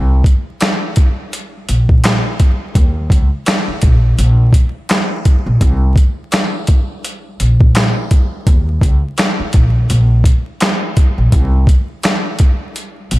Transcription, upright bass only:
Already playing: C2
1.69 A#1
2.76 D#2
3.10 C#2
3.68 muted upright bass stroke
3.83 A#1
4.19 A#1
5.46 A#1
5.61 C2
7.40 A#1
8.47 D#2
8.82 C#2
9.40 muted upright bass stroke
9.55 A#1
9.90 A#1
11.18 A#1
11.33 C2
13.12 A#1

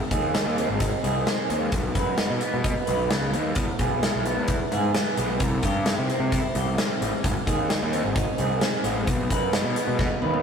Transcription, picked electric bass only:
0.11 D#2
0.46 D#2
0.69 G#1
1.03 C2
1.50 D#2
1.72 B1
1.95 F#2
2.30 B2
2.54 B2
2.88 B1
3.11 C#2
3.33 D#2
3.56 E2
3.79 B1
4.14 B1
4.38 E2
4.72 G#2
5.18 B1
5.40 C2
5.63 G2
5.98 C3
6.20 C3
6.55 C2
7.01 A1
7.25 G#1
7.47 D#2
7.82 D#2
8.04 G#1
8.38 C2
8.84 A1
9.08 B1
9.31 F#2
9.64 B2
9.87 B2
10.22 D#2

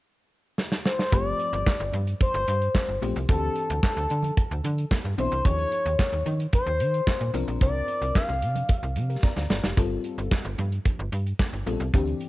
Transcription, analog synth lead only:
0.86 C5
1.13 D5
2.22 C5
3.29 A4
3.84 A4
5.20 C5
5.46 C#5
6.54 C5
7.62 D5
8.16 F5

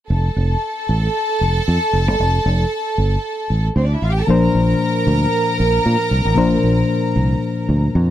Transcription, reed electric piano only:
4.27 A#2 F3 A#3 D4 C5
6.35 A#2 F3 A#3 D4 C5

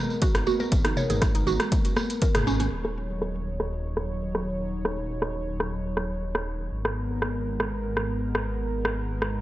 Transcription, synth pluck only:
0.22 F#4
0.47 F#4
0.60 A#4
0.85 D#4
0.97 C#5
1.10 G#4
1.35 D#4
1.47 F#4
2.22 A#4
2.35 G#4
2.47 C#4
2.60 C#4

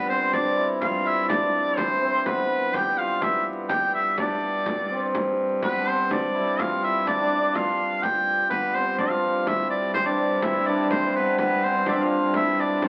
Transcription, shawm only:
0.10 C5
0.33 D5
0.81 F5
1.06 E5
1.29 D5
1.77 C5
2.26 B4
2.75 G5
2.98 F5
3.23 E5
3.69 G5
3.94 E5
4.18 D5
5.63 B4
5.88 C5
6.13 D5
6.60 F5
6.84 E5
7.08 D5
7.56 F5
8.03 G5
8.50 B4
8.75 C5
8.99 D5
9.09 F5
9.47 E5
9.70 D5
9.94 C5
10.06 D5
10.42 E5
10.67 D5
10.91 C5
11.16 B4
11.38 B4
11.64 C5
11.88 D5 E5
11.94 D5
12.01 F5
12.36 E5
12.60 D5

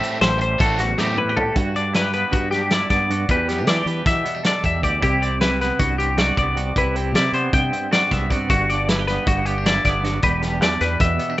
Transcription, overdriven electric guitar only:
0.00 E3 A3 C4 E4
0.19 muted overdriven electric guitar stroke
0.38 muted overdriven electric guitar stroke
0.58 E3 A3 C4 E4
0.80 muted overdriven electric guitar stroke
0.98 E3 A3 C4 E4
1.17 muted overdriven electric guitar stroke
1.37 muted overdriven electric guitar stroke

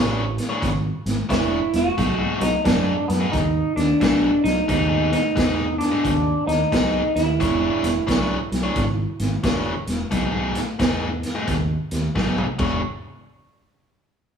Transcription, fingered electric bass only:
Already playing: A1
0.62 G#1
1.06 G#1
1.30 E1
1.74 E1
1.98 B1
2.41 B1
2.65 F#2
3.09 F#2
3.33 D#2
3.77 D#2
4.01 B1
4.44 B1
4.69 D#2
5.37 E2
6.05 D#2
6.48 D#2
6.73 B1
7.16 D#2
7.41 E1
7.83 E1
8.09 B1
8.52 B1
8.76 G#1
9.20 G#1
9.44 E1
9.87 E1
10.12 B1
10.80 E2
11.48 D#2
11.92 D#2
12.16 B1
12.59 E1

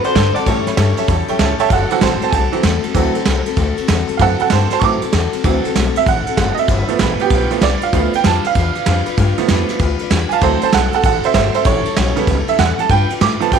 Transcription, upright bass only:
0.05 muted upright bass stroke
0.15 G2
0.36 muted upright bass stroke
0.46 A2
0.67 muted upright bass stroke
0.77 G2
0.98 muted upright bass stroke
1.09 E2
1.28 muted upright bass stroke
1.39 C#2
1.60 muted upright bass stroke
1.70 F#1
1.90 muted upright bass stroke
2.01 A1
2.21 muted upright bass stroke
2.33 C2
2.53 muted upright bass stroke
2.64 E2
2.84 muted upright bass stroke
2.95 D2
3.26 C2
3.47 muted upright bass stroke
3.57 D2
3.78 muted upright bass stroke
3.89 E2
4.09 muted upright bass stroke
4.20 F#2
4.41 muted upright bass stroke
4.52 G2
4.72 muted upright bass stroke
4.82 A2
5.02 muted upright bass stroke
5.13 E2
5.33 muted upright bass stroke
5.44 D2
5.65 muted upright bass stroke
5.76 B1
5.95 muted upright bass stroke
6.06 A1
6.27 muted upright bass stroke
6.37 F#1
6.57 muted upright bass stroke
6.68 G1
6.89 muted upright bass stroke
7.00 A1
7.19 muted upright bass stroke
7.31 B1
7.51 muted upright bass stroke
7.61 C2
7.81 muted upright bass stroke
7.93 D2
8.14 muted upright bass stroke
8.25 F2
8.45 muted upright bass stroke
8.55 E2
8.76 muted upright bass stroke
8.87 F2
9.07 muted upright bass stroke
9.18 G2
9.38 muted upright bass stroke
9.50 F2
9.80 D2
10.01 muted upright bass stroke
10.11 E2
10.31 muted upright bass stroke
10.42 D2
10.62 muted upright bass stroke
10.74 B1
10.94 muted upright bass stroke
11.04 A1
11.25 muted upright bass stroke
11.34 G1
11.55 muted upright bass stroke
11.65 A1
11.87 muted upright bass stroke
11.97 B1
12.18 muted upright bass stroke
12.27 C#2
12.48 muted upright bass stroke
12.59 E2
12.78 muted upright bass stroke
12.90 G2
13.21 A2
13.41 muted upright bass stroke
13.52 B2

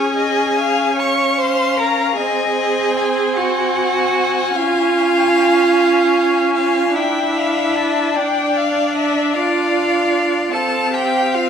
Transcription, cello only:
Already playing: G#4
0.96 C#5
1.38 C5
1.78 A#4
2.16 G#4
3.37 F#4
4.55 F4
6.55 F4
6.94 E4
8.15 D4
9.34 F4
10.54 A4
10.94 G4
11.35 F4

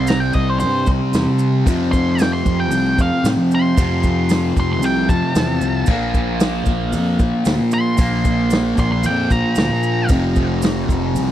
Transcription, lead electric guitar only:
0.08 A#5
0.20 G5
0.34 D#5
0.50 C5
0.60 C5
1.92 C6
2.21 G5
2.33 C6
2.60 G5
3.02 F5
3.55 C6
4.60 C6
4.73 C6
4.85 G5
5.09 A5
7.74 C6
8.80 C6
8.92 C6
9.06 G5
9.31 A#5

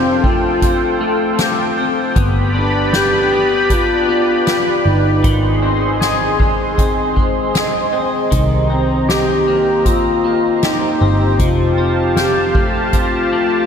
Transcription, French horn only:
Already playing: C4
0.27 F4
2.59 D4
2.96 G4
3.73 F4
4.88 D#4
8.72 C4
9.11 G4
9.88 F4
10.65 D#4
11.42 F4
12.20 G4
12.97 F4

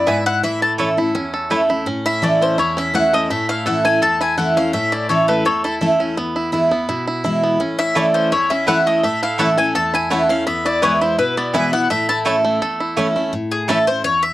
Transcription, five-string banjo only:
Already playing: B3 E4
0.07 E4
0.26 E4
0.43 E3
0.62 A3
0.80 A4
0.98 E4
1.15 C#4
1.34 A4
1.51 A3
1.70 E4
1.87 C#4
2.06 E4
2.23 A3
2.41 C#4
2.58 E4
2.77 C#4
2.94 E4
3.13 A3
3.30 A3
3.49 E4
3.66 A4
3.85 A3
4.02 A4
4.21 E4
4.38 A3
4.57 C#4
4.74 A3
4.92 E4
5.10 A4
5.29 A3
5.46 A4
5.65 E4
5.81 A3
6.00 C#4
6.17 B3
6.36 E4
6.53 E4
6.72 B3
6.89 E4
7.08 E4
7.25 E4
7.44 B3
7.60 C#4
7.79 E4
7.96 A3
8.15 C#4
8.32 E4
8.51 C#4
8.68 E4
8.87 A3
9.03 A3
9.23 E4
9.39 A4
9.58 A3
9.75 A4
9.94 E4
10.10 A3
10.29 C#4
10.47 B3
10.65 E4
10.82 B3
11.01 E4
11.18 E4
11.37 B3
11.54 E4
11.73 B3
11.90 A3
12.09 E4
12.26 A4
12.45 A3
12.62 A4
12.80 E4
12.97 C#4
13.16 A3
13.69 A3 C#4 E4

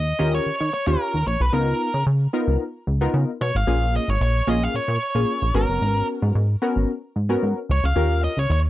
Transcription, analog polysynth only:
0.19 C#4 F4 G4 A#4
0.87 C#4 F4 G4 C#5
1.52 B3 D#4 F4 A#4
2.33 B3 D#4 F4 A#4
3.01 B3 D#4 F4 A#4
3.67 A#3 C#4 F4 G#4
4.47 A#3 C#4 F4 G#4
5.15 A#3 C#4 F4 G#4
5.54 B3 C#4 F#4 A#4
6.62 B3 C#4 F#4 A#4
7.29 B3 C#4 F#4 A#4
7.96 C#4 F4 G4 A#4

